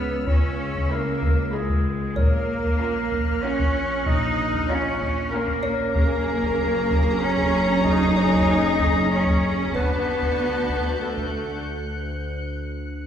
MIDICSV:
0, 0, Header, 1, 12, 480
1, 0, Start_track
1, 0, Tempo, 631579
1, 206, Time_signature, 3, 2, 24, 8
1, 9931, End_track
2, 0, Start_track
2, 0, Title_t, "Violin section"
2, 0, Program_c, 0, 48
2, 0, Note_on_c, 0, 88, 36
2, 0, Note_on_c, 0, 89, 36
2, 902, Note_off_c, 0, 89, 0
2, 1380, Note_off_c, 0, 88, 0
2, 1654, Note_on_c, 0, 89, 40
2, 2139, Note_on_c, 0, 90, 39
2, 4260, Note_off_c, 0, 89, 0
2, 4262, Note_off_c, 0, 90, 0
2, 7418, Note_on_c, 0, 90, 41
2, 7418, Note_on_c, 0, 91, 41
2, 8366, Note_on_c, 0, 97, 26
2, 9542, Note_off_c, 0, 91, 0
2, 9931, Note_off_c, 0, 90, 0
2, 9931, Note_off_c, 0, 97, 0
2, 9931, End_track
3, 0, Start_track
3, 0, Title_t, "Violin section"
3, 0, Program_c, 1, 48
3, 695, Note_on_c, 1, 83, 46
3, 1048, Note_off_c, 1, 83, 0
3, 1161, Note_on_c, 1, 83, 44
3, 1521, Note_off_c, 1, 83, 0
3, 2125, Note_on_c, 1, 82, 54
3, 2483, Note_off_c, 1, 82, 0
3, 2602, Note_on_c, 1, 82, 46
3, 2961, Note_off_c, 1, 82, 0
3, 3566, Note_on_c, 1, 82, 60
3, 3923, Note_off_c, 1, 82, 0
3, 4042, Note_on_c, 1, 82, 56
3, 4401, Note_off_c, 1, 82, 0
3, 4507, Note_on_c, 1, 82, 63
3, 7366, Note_off_c, 1, 82, 0
3, 7404, Note_on_c, 1, 81, 51
3, 8815, Note_off_c, 1, 81, 0
3, 9931, End_track
4, 0, Start_track
4, 0, Title_t, "Music box"
4, 0, Program_c, 2, 10
4, 0, Note_on_c, 2, 61, 33
4, 0, Note_on_c, 2, 73, 38
4, 893, Note_off_c, 2, 61, 0
4, 895, Note_off_c, 2, 73, 0
4, 1643, Note_on_c, 2, 73, 32
4, 3054, Note_off_c, 2, 73, 0
4, 4277, Note_on_c, 2, 73, 60
4, 4279, Note_on_c, 2, 61, 42
4, 5691, Note_off_c, 2, 73, 0
4, 5692, Note_off_c, 2, 61, 0
4, 6206, Note_on_c, 2, 73, 45
4, 7408, Note_on_c, 2, 71, 42
4, 7616, Note_off_c, 2, 73, 0
4, 8359, Note_off_c, 2, 71, 0
4, 8369, Note_on_c, 2, 71, 28
4, 8817, Note_off_c, 2, 71, 0
4, 9931, End_track
5, 0, Start_track
5, 0, Title_t, "Clarinet"
5, 0, Program_c, 3, 71
5, 0, Note_on_c, 3, 71, 55
5, 194, Note_off_c, 3, 71, 0
5, 199, Note_on_c, 3, 73, 57
5, 688, Note_on_c, 3, 70, 72
5, 700, Note_off_c, 3, 73, 0
5, 1171, Note_on_c, 3, 68, 55
5, 1182, Note_off_c, 3, 70, 0
5, 1636, Note_off_c, 3, 68, 0
5, 1641, Note_on_c, 3, 70, 71
5, 2604, Note_on_c, 3, 73, 76
5, 2616, Note_off_c, 3, 70, 0
5, 3082, Note_off_c, 3, 73, 0
5, 3086, Note_on_c, 3, 75, 78
5, 3567, Note_on_c, 3, 73, 83
5, 3579, Note_off_c, 3, 75, 0
5, 3879, Note_off_c, 3, 73, 0
5, 4033, Note_on_c, 3, 70, 77
5, 4489, Note_off_c, 3, 70, 0
5, 4526, Note_on_c, 3, 70, 86
5, 5491, Note_on_c, 3, 73, 75
5, 5502, Note_off_c, 3, 70, 0
5, 5952, Note_off_c, 3, 73, 0
5, 5956, Note_on_c, 3, 75, 92
5, 6934, Note_on_c, 3, 73, 73
5, 6945, Note_off_c, 3, 75, 0
5, 7407, Note_off_c, 3, 73, 0
5, 7412, Note_on_c, 3, 71, 86
5, 8370, Note_on_c, 3, 69, 49
5, 8382, Note_off_c, 3, 71, 0
5, 8848, Note_off_c, 3, 69, 0
5, 9931, End_track
6, 0, Start_track
6, 0, Title_t, "Violin section"
6, 0, Program_c, 4, 48
6, 0, Note_on_c, 4, 64, 48
6, 92, Note_off_c, 4, 64, 0
6, 700, Note_on_c, 4, 64, 46
6, 1051, Note_off_c, 4, 64, 0
6, 1186, Note_on_c, 4, 64, 45
6, 1534, Note_off_c, 4, 64, 0
6, 2137, Note_on_c, 4, 65, 53
6, 2489, Note_off_c, 4, 65, 0
6, 2613, Note_on_c, 4, 65, 51
6, 2967, Note_off_c, 4, 65, 0
6, 3579, Note_on_c, 4, 65, 68
6, 3930, Note_off_c, 4, 65, 0
6, 4057, Note_on_c, 4, 65, 58
6, 4409, Note_off_c, 4, 65, 0
6, 4528, Note_on_c, 4, 68, 61
6, 7377, Note_off_c, 4, 68, 0
6, 7413, Note_on_c, 4, 66, 50
6, 8819, Note_off_c, 4, 66, 0
6, 9931, End_track
7, 0, Start_track
7, 0, Title_t, "Viola section"
7, 0, Program_c, 5, 48
7, 0, Note_on_c, 5, 56, 49
7, 84, Note_off_c, 5, 56, 0
7, 684, Note_on_c, 5, 56, 47
7, 1042, Note_off_c, 5, 56, 0
7, 1167, Note_on_c, 5, 56, 54
7, 1524, Note_off_c, 5, 56, 0
7, 2122, Note_on_c, 5, 61, 50
7, 2481, Note_off_c, 5, 61, 0
7, 2610, Note_on_c, 5, 61, 64
7, 2965, Note_off_c, 5, 61, 0
7, 3569, Note_on_c, 5, 61, 61
7, 3925, Note_off_c, 5, 61, 0
7, 4050, Note_on_c, 5, 61, 67
7, 4405, Note_off_c, 5, 61, 0
7, 4533, Note_on_c, 5, 61, 67
7, 7379, Note_off_c, 5, 61, 0
7, 7413, Note_on_c, 5, 62, 50
7, 8819, Note_off_c, 5, 62, 0
7, 9931, End_track
8, 0, Start_track
8, 0, Title_t, "Cello section"
8, 0, Program_c, 6, 48
8, 0, Note_on_c, 6, 59, 58
8, 211, Note_off_c, 6, 59, 0
8, 213, Note_on_c, 6, 61, 57
8, 680, Note_off_c, 6, 61, 0
8, 694, Note_on_c, 6, 58, 61
8, 1170, Note_off_c, 6, 58, 0
8, 1170, Note_on_c, 6, 56, 51
8, 1639, Note_off_c, 6, 56, 0
8, 1650, Note_on_c, 6, 58, 70
8, 2608, Note_off_c, 6, 58, 0
8, 2609, Note_on_c, 6, 61, 70
8, 3088, Note_off_c, 6, 61, 0
8, 3095, Note_on_c, 6, 63, 77
8, 3561, Note_off_c, 6, 63, 0
8, 3571, Note_on_c, 6, 61, 68
8, 4049, Note_off_c, 6, 61, 0
8, 4053, Note_on_c, 6, 58, 70
8, 4521, Note_off_c, 6, 58, 0
8, 4530, Note_on_c, 6, 58, 80
8, 5469, Note_off_c, 6, 58, 0
8, 5483, Note_on_c, 6, 61, 81
8, 5965, Note_off_c, 6, 61, 0
8, 5969, Note_on_c, 6, 63, 86
8, 6909, Note_off_c, 6, 63, 0
8, 6928, Note_on_c, 6, 61, 70
8, 7398, Note_off_c, 6, 61, 0
8, 7408, Note_on_c, 6, 59, 71
8, 8367, Note_off_c, 6, 59, 0
8, 8376, Note_on_c, 6, 57, 48
8, 8851, Note_off_c, 6, 57, 0
8, 9931, End_track
9, 0, Start_track
9, 0, Title_t, "Synth drone"
9, 0, Program_c, 7, 95
9, 0, Note_on_c, 7, 37, 61
9, 1617, Note_off_c, 7, 37, 0
9, 1638, Note_on_c, 7, 34, 63
9, 4522, Note_off_c, 7, 34, 0
9, 4523, Note_on_c, 7, 30, 61
9, 7404, Note_off_c, 7, 30, 0
9, 7410, Note_on_c, 7, 38, 62
9, 9931, Note_off_c, 7, 38, 0
9, 9931, End_track
10, 0, Start_track
10, 0, Title_t, "Double bass section"
10, 0, Program_c, 8, 48
10, 209, Note_on_c, 8, 37, 55
10, 587, Note_off_c, 8, 37, 0
10, 1656, Note_on_c, 8, 34, 54
10, 2031, Note_off_c, 8, 34, 0
10, 3097, Note_on_c, 8, 34, 65
10, 3471, Note_off_c, 8, 34, 0
10, 4532, Note_on_c, 8, 30, 62
10, 7379, Note_off_c, 8, 30, 0
10, 7405, Note_on_c, 8, 38, 49
10, 8846, Note_off_c, 8, 38, 0
10, 9931, End_track
11, 0, Start_track
11, 0, Title_t, "Impact"
11, 0, Program_c, 10, 103
11, 0, Note_on_c, 10, 60, 51
11, 209, Note_off_c, 10, 60, 0
11, 9931, End_track
12, 0, Start_track
12, 0, Title_t, "Taiko and cinematic ensemble drums"
12, 207, Note_on_c, 9, 41, 73
12, 283, Note_off_c, 9, 41, 0
12, 572, Note_on_c, 9, 41, 60
12, 648, Note_off_c, 9, 41, 0
12, 927, Note_on_c, 9, 41, 73
12, 1003, Note_off_c, 9, 41, 0
12, 1292, Note_on_c, 9, 41, 67
12, 1368, Note_off_c, 9, 41, 0
12, 1649, Note_on_c, 9, 41, 72
12, 1725, Note_off_c, 9, 41, 0
12, 2013, Note_on_c, 9, 41, 68
12, 2089, Note_off_c, 9, 41, 0
12, 2371, Note_on_c, 9, 41, 73
12, 2447, Note_off_c, 9, 41, 0
12, 2732, Note_on_c, 9, 41, 66
12, 2808, Note_off_c, 9, 41, 0
12, 3087, Note_on_c, 9, 41, 68
12, 3163, Note_off_c, 9, 41, 0
12, 3447, Note_on_c, 9, 41, 72
12, 3523, Note_off_c, 9, 41, 0
12, 3807, Note_on_c, 9, 41, 71
12, 3883, Note_off_c, 9, 41, 0
12, 4168, Note_on_c, 9, 41, 67
12, 4244, Note_off_c, 9, 41, 0
12, 4527, Note_on_c, 9, 41, 80
12, 4603, Note_off_c, 9, 41, 0
12, 4886, Note_on_c, 9, 41, 67
12, 4962, Note_off_c, 9, 41, 0
12, 5247, Note_on_c, 9, 41, 76
12, 5323, Note_off_c, 9, 41, 0
12, 5605, Note_on_c, 9, 41, 66
12, 5681, Note_off_c, 9, 41, 0
12, 5965, Note_on_c, 9, 41, 85
12, 6041, Note_off_c, 9, 41, 0
12, 6324, Note_on_c, 9, 41, 61
12, 6400, Note_off_c, 9, 41, 0
12, 6686, Note_on_c, 9, 41, 66
12, 6762, Note_off_c, 9, 41, 0
12, 7045, Note_on_c, 9, 41, 63
12, 7121, Note_off_c, 9, 41, 0
12, 7410, Note_on_c, 9, 41, 77
12, 7486, Note_off_c, 9, 41, 0
12, 7769, Note_on_c, 9, 41, 59
12, 7845, Note_off_c, 9, 41, 0
12, 8128, Note_on_c, 9, 41, 67
12, 8204, Note_off_c, 9, 41, 0
12, 8493, Note_on_c, 9, 41, 57
12, 8569, Note_off_c, 9, 41, 0
12, 9931, End_track
0, 0, End_of_file